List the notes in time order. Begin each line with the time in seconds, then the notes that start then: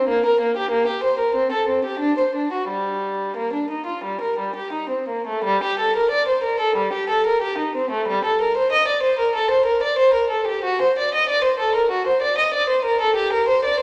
0.08 A#3
0.26 A#4
0.41 A#3
0.57 G4
0.71 A#3
0.87 G4
1.04 C5
1.19 A#4
1.35 C4
1.52 A4
1.68 C4
1.85 G4
1.99 D4
2.18 C5
2.35 D4
2.52 F#4
2.68 G3
3.37 A#3
3.53 D4
3.70 D#4
3.86 F4
4.04 G3
4.21 A#4
4.39 G3
4.56 G4
4.73 D#4
4.90 C4
5.08 A#3
5.27 A3
5.44 G3
5.63 G4
5.79 A4
5.96 A#4
6.11 D5
6.28 C5
6.43 A#4
6.60 A4
6.76 G3
6.93 G4
7.10 A4
7.26 A#4
7.42 G4
7.58 D#4
7.75 C4
7.90 A3
8.08 G3
8.25 A4
8.41 A#4
8.57 C5
8.72 D#5
8.88 D5
9.03 C5
9.19 A#4
9.35 A4
9.50 C5
9.65 A#4
9.83 D5
9.98 C5
10.14 A#4
10.30 A4
10.47 G4
10.64 F#4
10.82 C5
10.99 D5
11.14 D#5
11.29 D5
11.44 C5
11.59 A4
11.75 A#4
11.91 F#4
12.07 C5
12.22 D5
12.38 D#5
12.54 D5
12.69 C5
12.84 A#4
13.01 A4
13.16 G4
13.33 A#4
13.48 C5
13.65 D5